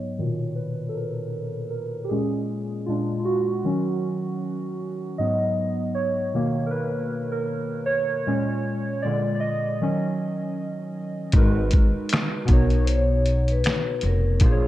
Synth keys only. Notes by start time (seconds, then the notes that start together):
Already playing: G#2 F#3 B3 C#5 D#5
0.18 A#2 B2 D#3
0.55 B4
0.89 A4
0.94 A#4
1.70 A#4
2.04 G4
2.09 A#2 G#3 C#4 G#4
2.86 A#2 G#3 D4 F4
3.20 F4
3.25 F#4
3.64 D#3 F#3 C#4
5.18 G#2 F#3 B3 D#5
5.95 C#5
6.34 B2 D#3 A#3
6.66 A#4
6.71 B4
7.32 A#4
7.86 C#5
8.27 A#2 G#3 C#4
9.02 A#2 D3 G#3 D5
9.35 D5
9.40 D#5
9.81 D#3 F#3 C#4
11.34 G#3 D#4 F#4 A#4 B4
12.45 B2 B3 D#4
12.50 F#4 C#5
14.42 A#2 A#3 F4 G#4 C5
14.52 C#5